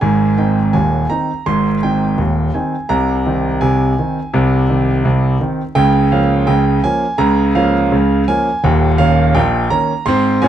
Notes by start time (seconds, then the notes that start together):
0.01 G#1 G#2 G#5
0.38 D#3 C4 D#4 G5
0.73 D#1 D#2 G#5
1.10 D#3 C4 D#4 A#5
1.46 G#1 G#2 C6
1.83 D#3 C4 D#4 G5
2.18 D#1 D#2
2.54 D#3 C4 D#4 G#5
2.89 C2 C3 A#5
3.26 D#3 C4 D#4
3.61 C2 C3 G#5
3.99 D#3 C4 D#4
4.34 C2 C3
4.69 D#3 C4 D#4
5.05 C2 C3
5.40 D#3 C4 D#4
5.75 C#2 C#3 G5
6.12 F3 A#3 C#4 F5
6.47 C#2 C#3 G5
6.84 F3 A#3 C#4 G#5
7.18 C#2 C#3 A#5
7.55 F3 A#3 C#4 F5
7.92 C#2 C#3
8.28 F3 A#3 C#4 G#5
8.64 D#1 D#2 G5
8.98 D#3 A#3 C#4 F5
9.35 A#1 A#2 G5
9.70 D#3 A#3 C#4 A#5
10.06 G#2 C4 C6
10.42 A#2 C#4 G#5